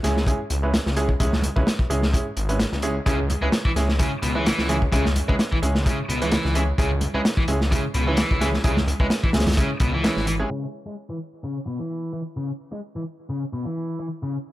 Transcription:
0.03 detuned saw bass C#2, grand piano G#3 C#4 E4 G#4, snare, closed hi-hat
0.17 snare
0.27 grand piano G#3 C#4 E4 G#4, kick, closed hi-hat
0.50 detuned saw bass C#2, closed hi-hat
0.63 grand piano G#3 C#4 E4 B4
0.74 snare, closed hi-hat
0.86 detuned saw bass C#2, snare
0.97 grand piano G#3 C#4 E4 G#4, closed hi-hat
1.09 kick
1.20 detuned saw bass C#2, grand piano G#3 C#4 E4 G#4, kick, closed hi-hat
1.33 snare, high conga
1.42 closed hi-hat, high conga
1.56 detuned saw bass C#2, grand piano G#3 C#4 E4 B4, kick
1.67 snare, closed hi-hat
1.79 kick
1.90 detuned saw bass C#2, grand piano G#3 C#4 E4 G#4, closed hi-hat
2.03 snare
2.13 grand piano G#3 C#4 E4 G#4, kick, closed hi-hat
2.37 detuned saw bass G#1, closed hi-hat
2.49 grand piano G#3 C#4 E4 B4, closed hi-hat
2.60 snare, closed hi-hat
2.72 detuned saw bass C#2, snare
2.82 grand piano G#3 C#4 E4 G#4, closed hi-hat
3.06 detuned saw bass C#2, overdriven electric guitar C#3, grand piano G#3 C#4 E4 G#4, kick, closed hi-hat
3.30 closed hi-hat, high conga
3.42 detuned saw bass C#2, overdriven electric guitar G#3, grand piano G#3 C#4 E4 B4
3.52 snare, closed hi-hat
3.65 overdriven electric guitar E3, kick
3.76 detuned saw bass C#2, grand piano G#3 C#4 E4 G#4, snare, closed hi-hat
3.89 snare
3.99 overdriven electric guitar C#3, grand piano G#3 C#4 E4 G#4, kick, closed hi-hat
4.22 detuned saw bass C#2, overdriven electric guitar B2, closed hi-hat
4.35 overdriven electric guitar E3, grand piano G#3 C#4 E4 B4
4.46 snare, closed hi-hat
4.58 detuned saw bass C#2, snare
4.69 overdriven electric guitar E3, grand piano G#3 C#4 E4 G#4, closed hi-hat
4.82 kick
4.92 detuned saw bass C#2, overdriven electric guitar C#3, grand piano G#3 C#4 E4 G#4, kick, closed hi-hat
5.05 snare, high conga
5.16 closed hi-hat, high conga
5.28 detuned saw bass C#2, grand piano G#3 C#4 E4 B4, overdriven electric guitar G#3, kick
5.39 snare, closed hi-hat
5.52 overdriven electric guitar E3, kick
5.62 detuned saw bass C#2, grand piano G#3 C#4 E4 G#4, closed hi-hat
5.75 snare
5.86 overdriven electric guitar C#3, grand piano G#3 C#4 E4 G#4, kick, closed hi-hat
6.09 detuned saw bass C#2, overdriven electric guitar B2, closed hi-hat
6.22 overdriven electric guitar E3, grand piano G#3 C#4 E4 B4, closed hi-hat
6.31 snare, closed hi-hat
6.45 detuned saw bass C#2, snare
6.55 overdriven electric guitar E3, grand piano G#3 C#4 E4 G#4, closed hi-hat
6.78 detuned saw bass C#2, overdriven electric guitar C#3, grand piano G#3 C#4 E4 G#4, kick, closed hi-hat
7.01 closed hi-hat, high conga
7.14 detuned saw bass C#2, grand piano G#3 C#4 E4 B4, overdriven electric guitar G#3
7.25 snare, closed hi-hat
7.37 overdriven electric guitar E3, kick
7.48 detuned saw bass C#2, grand piano G#3 C#4 E4 G#4, closed hi-hat
7.61 snare
7.71 overdriven electric guitar C#3, grand piano G#3 C#4 E4 G#4, kick, closed hi-hat
7.94 detuned saw bass C#2, overdriven electric guitar B2, closed hi-hat
8.07 overdriven electric guitar E3, grand piano G#3 C#4 E4 B4
8.17 snare, closed hi-hat
8.31 detuned saw bass C#2, kick
8.41 overdriven electric guitar E3, grand piano G#3 C#4 E4 G#4, snare, closed hi-hat
8.54 snare
8.64 detuned saw bass C#2, overdriven electric guitar C#3, grand piano G#3 C#4 E4 G#4, kick, closed hi-hat
8.77 snare, high conga
8.87 closed hi-hat, high conga
9.00 detuned saw bass C#2, grand piano G#3 C#4 E4 B4, overdriven electric guitar G#3, kick
9.10 snare, closed hi-hat
9.23 overdriven electric guitar E3, kick
9.33 detuned saw bass C#2, grand piano G#3 C#4 E4 G#4, snare, closed hi-hat
9.40 snare, closed hi-hat
9.47 snare, closed hi-hat, low conga
9.51 snare, closed hi-hat
9.57 overdriven electric guitar C#3, grand piano G#3 C#4 E4 G#4, kick, closed hi-hat
9.80 detuned saw bass C#2, overdriven electric guitar B2, kick, closed hi-hat
9.93 overdriven electric guitar E3
10.04 grand piano G#3 C#4 E4 B4, snare, closed hi-hat
10.16 detuned saw bass G#1, snare
10.27 overdriven electric guitar E3, closed hi-hat
10.39 grand piano G#3 C#4 E4 G#4
10.50 overdriven electric guitar C#3
10.86 overdriven electric guitar G#3
11.10 overdriven electric guitar E3
11.44 overdriven electric guitar C#3
11.67 overdriven electric guitar B2
11.79 overdriven electric guitar E3
12.13 overdriven electric guitar E3
12.37 overdriven electric guitar C#3
12.72 overdriven electric guitar G#3
12.96 overdriven electric guitar E3
13.29 overdriven electric guitar C#3
13.53 overdriven electric guitar B2
13.65 overdriven electric guitar E3
14.00 overdriven electric guitar E3
14.23 overdriven electric guitar C#3

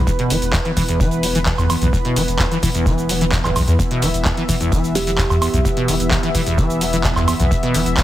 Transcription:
Already playing: analog synth pad E3 B3 B4
0.07 acid bass E2, kick, closed hi-hat, shaker
0.19 acid bass B2, closed hi-hat
0.30 sub bass E1, acid bass E3, closed hi-hat, open hi-hat, shaker
0.42 sub bass E1, closed hi-hat, shaker
0.53 acid bass E2, kick, snare, clap, closed hi-hat, shaker
0.65 acid bass E3, closed hi-hat
0.77 sub bass E1, acid bass E3, kick, closed hi-hat, open hi-hat, shaker
0.89 acid bass E2, closed hi-hat, shaker
1.00 acid bass E3, kick, closed hi-hat, shaker
1.11 sub bass E1, closed hi-hat, shaker
1.23 acid bass G3, closed hi-hat, open hi-hat, shaker
1.35 acid bass E3, closed hi-hat, shaker
1.46 acid bass E2, kick, snare, clap, open hi-hat, shaker
1.58 sub bass E2, acid bass E2, kick, closed hi-hat, high woodblock, shaker
1.70 acid bass E2, closed hi-hat, open hi-hat, high woodblock, shaker
1.81 sub bass B1, acid bass E2, closed hi-hat, shaker
1.93 acid bass E2, kick, closed hi-hat, shaker
2.05 acid bass B2, closed hi-hat
2.16 sub bass E1, acid bass E3, closed hi-hat, open hi-hat, shaker
2.28 sub bass E1, closed hi-hat, shaker
2.39 acid bass E2, kick, snare, clap, closed hi-hat, shaker
2.51 acid bass E3, closed hi-hat, shaker
2.63 sub bass E1, acid bass E3, kick, closed hi-hat, open hi-hat, shaker
2.75 acid bass E2, closed hi-hat, shaker
2.86 acid bass E3, kick, closed hi-hat, shaker
2.98 sub bass E1, closed hi-hat, shaker
3.09 acid bass G3, closed hi-hat, open hi-hat, shaker
3.21 acid bass E3, closed hi-hat, shaker
3.32 acid bass E2, kick, snare, clap, closed hi-hat, shaker
3.44 sub bass D1, acid bass E2, kick, clap, high woodblock, shaker
3.56 sub bass B1, acid bass E2, closed hi-hat, open hi-hat, high woodblock, shaker
3.67 sub bass E2, acid bass E2, closed hi-hat, shaker
3.79 acid bass E2, analog synth pad E5, kick, closed hi-hat, shaker
3.91 acid bass B2, closed hi-hat
4.02 sub bass E1, acid bass E3, closed hi-hat, open hi-hat, shaker
4.14 sub bass E1, closed hi-hat, shaker
4.25 acid bass E2, kick, snare, clap, closed hi-hat, shaker
4.37 acid bass E3, closed hi-hat
4.49 sub bass E1, acid bass E3, kick, closed hi-hat, open hi-hat, shaker
4.61 acid bass E2, closed hi-hat, shaker
4.72 acid bass E3, kick, closed hi-hat, shaker
4.84 sub bass E1, closed hi-hat, shaker
4.95 acid bass G3, kalimba G4, closed hi-hat, open hi-hat, shaker
5.07 acid bass E3, closed hi-hat, shaker
5.18 acid bass E2, kick, snare, clap, open hi-hat, shaker
5.30 sub bass E2, acid bass E2, kick, closed hi-hat, high woodblock, shaker
5.42 acid bass E2, closed hi-hat, open hi-hat, high woodblock, shaker
5.53 sub bass B1, acid bass E2, closed hi-hat, shaker
5.65 acid bass E2, kick, closed hi-hat, shaker
5.77 acid bass B2, closed hi-hat
5.88 sub bass E1, acid bass E3, closed hi-hat, open hi-hat, shaker
6.00 sub bass E1, closed hi-hat, shaker
6.11 acid bass E2, kick, snare, clap, closed hi-hat, shaker
6.23 acid bass E3, closed hi-hat
6.35 sub bass E1, acid bass E3, kick, closed hi-hat, open hi-hat, shaker
6.46 acid bass E2, closed hi-hat, shaker
6.58 acid bass E3, kick, closed hi-hat, shaker
6.70 sub bass E1, closed hi-hat, shaker
6.81 acid bass G3, closed hi-hat, open hi-hat, shaker
6.93 acid bass E3, closed hi-hat, shaker
7.04 acid bass E2, kick, snare, clap, closed hi-hat, shaker
7.16 sub bass E2, acid bass E2, kick, clap, high woodblock, shaker
7.28 acid bass E2, closed hi-hat, open hi-hat, high woodblock, shaker
7.40 sub bass B1, acid bass E2, closed hi-hat, shaker
7.51 acid bass E2, kick, closed hi-hat, shaker
7.63 acid bass B2, closed hi-hat
7.74 sub bass E1, acid bass E3, closed hi-hat, open hi-hat, shaker
7.86 sub bass E1, closed hi-hat, shaker
7.97 acid bass E2, kick, snare, clap, closed hi-hat, shaker

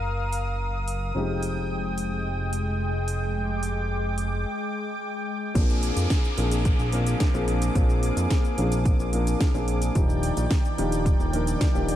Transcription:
Already playing: analog synth bass F#1, grand piano F#3 A#3 C#4 D#4 G#4, analog synth pad A#4 F5 D#6
0.33 open hi-hat
0.88 open hi-hat
1.15 analog synth bass F1, grand piano F3 G#3 C4 D#4 G4, analog synth pad G#3 G5
1.43 open hi-hat
1.98 open hi-hat
2.53 open hi-hat
3.08 open hi-hat
3.35 analog synth pad D6
3.63 open hi-hat
4.18 open hi-hat
5.54 analog synth bass A#1, grand piano F3 A#3 C4 D4 G#4, analog synth pad A#3 G#4 D6, kick, closed hi-hat, downlifter, cabasa
5.70 cabasa
5.83 open hi-hat
5.97 analog synth bass F2, closed hi-hat, cabasa
6.10 kick, snare, closed hi-hat, cabasa
6.24 cabasa
6.37 analog synth bass A#1, grand piano F3 A#3 C4 D4 G#4, open hi-hat
6.51 closed hi-hat, cabasa
6.65 kick, closed hi-hat, cabasa
6.79 analog synth bass A#1, cabasa
6.92 grand piano F3 A#3 C4 D4 A#4, open hi-hat
7.07 closed hi-hat, cabasa
7.20 kick, snare, closed hi-hat, cabasa
7.34 analog synth bass A#1, grand piano F3 A#3 C4 D4 G#4, cabasa
7.48 open hi-hat
7.62 closed hi-hat, cabasa
7.75 analog synth bass A#1, grand piano F3 A#3 C4 D4 G#4, kick, closed hi-hat, cabasa
7.90 cabasa
8.03 open hi-hat
8.17 analog synth bass F2, closed hi-hat, cabasa
8.30 kick, snare, closed hi-hat, cabasa
8.45 cabasa
8.58 analog synth bass A#1, grand piano F3 A#3 C4 D4 G#4, open hi-hat
8.72 closed hi-hat, cabasa
8.85 kick, closed hi-hat, cabasa
8.99 analog synth bass A#1, cabasa
9.13 grand piano F3 A#3 C4 D4 A#4, open hi-hat
9.27 closed hi-hat, cabasa
9.40 kick, snare, closed hi-hat, cabasa
9.54 analog synth bass A#1, grand piano F3 A#3 C4 D4 G#4, cabasa
9.68 open hi-hat
9.82 closed hi-hat, cabasa
9.95 analog synth bass D#1, analog synth pad D#3 D5 G5, grand piano F3 A#3 D4 D#4 G4, kick, closed hi-hat, cabasa
10.10 cabasa
10.23 open hi-hat
10.37 analog synth bass A#1, closed hi-hat, cabasa
10.51 kick, snare, closed hi-hat, cabasa
10.65 cabasa
10.78 analog synth bass D#1, grand piano F3 A#3 D4 D#4 G4, open hi-hat
10.92 closed hi-hat, cabasa
11.06 kick, closed hi-hat, cabasa
11.20 analog synth bass D#1, cabasa
11.33 grand piano F3 A#3 D4 D#4 A#4, open hi-hat
11.47 closed hi-hat, cabasa
11.61 kick, snare, closed hi-hat, cabasa
11.74 analog synth bass D#1, grand piano F3 A#3 D4 D#4 G4, cabasa
11.89 open hi-hat

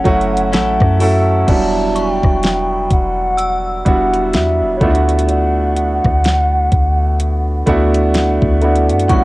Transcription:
Already playing: clean electric guitar F#3 C#4 E4 A4, soft synth lead F#5
0.04 808-style bass F#1, grand piano F#3 A3 C#4 E4 F#4, kick, closed hi-hat
0.21 closed hi-hat
0.37 closed hi-hat
0.52 808-style bass A1, clean electric guitar C#4 E4 A4, soft synth lead F#5, snare, closed hi-hat
0.80 808-style bass F#2, kick, cross-stick
0.99 grand piano F#3 A3 C#4 E4 A4, clean electric guitar E4, soft synth lead F#5, open hi-hat
1.47 808-style bass E1, grand piano F#3 G3 B3 D4 E4, soft synth lead A5, kick, closed hi-hat, crash
1.95 soft synth lead G5, synth bell C#6, closed hi-hat
2.23 808-style bass E1, kick, cross-stick
2.43 snare, closed hi-hat
2.91 808-style bass E1, soft synth lead F#5, kick, closed hi-hat
3.38 synth bell E6, closed hi-hat
3.85 808-style bass E1, grand piano G3 B3 D4 E4 F#4, soft synth lead F#5, kick, closed hi-hat
4.14 closed hi-hat
4.34 808-style bass E2, soft synth lead E5, snare, closed hi-hat
4.62 808-style bass E1
4.77 grand piano A3, soft synth lead C#5
4.81 808-style bass D2, grand piano B3 D4 E4 F4, soft synth lead D5, kick, closed hi-hat
4.90 grand piano F#4
4.95 closed hi-hat
5.09 closed hi-hat
5.19 closed hi-hat
5.29 soft synth lead F#5, closed hi-hat
5.76 closed hi-hat
6.04 808-style bass D2, kick, cross-stick
6.24 snare, closed hi-hat
6.72 808-style bass D2, kick, closed hi-hat
7.20 closed hi-hat
7.66 808-style bass D2, grand piano A3 B3 D4 E4 F#4, kick, closed hi-hat
7.94 closed hi-hat
8.14 soft synth lead F#5, snare, closed hi-hat
8.42 808-style bass D2, kick
8.62 grand piano A3 B3 D4 E4 F#4, soft synth lead F#5, closed hi-hat
8.76 closed hi-hat
8.90 808-style bass F#2, closed hi-hat
9.00 closed hi-hat
9.09 808-style bass A1, clean electric guitar A2, grand piano G3 B3 C#4 E4 F#4, synth bell C#6, kick, closed hi-hat

